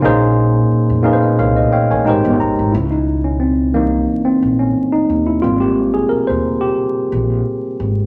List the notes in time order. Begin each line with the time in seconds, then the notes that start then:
0.01 A#1 A#2 A#3 C#4 D#4 G#4
0.06 C5
0.72 muted upright bass stroke
0.90 F2
1.02 A#2 A#3 C#4 D#4 G#4 F5
1.07 B4
1.13 C5
1.23 D#5
1.39 C2 A#4 C#5 F5
1.56 C5 D#5
1.72 C#5 F5 G5, muted upright bass stroke
1.91 A#1 A#4 C#5 G#5
2.05 G#1 G#3 D#4 G4 A#4 G5
2.09 C5
2.25 G1
2.40 G1 A#5
2.59 G#1
2.72 C#2 E4
2.91 D#4
3.24 C#4
3.40 C4
3.74 C2 E3 A#3 D#4
4.25 C4
4.42 A#1
4.59 C#4
4.92 D#4
5.10 D#2
5.27 E4
5.42 G#1 G3 A#3 C4 F4
5.60 G4
5.94 G#4
6.09 A#4, muted upright bass stroke
6.27 D#2 C5
6.61 G4
7.12 A#1
7.80 G#1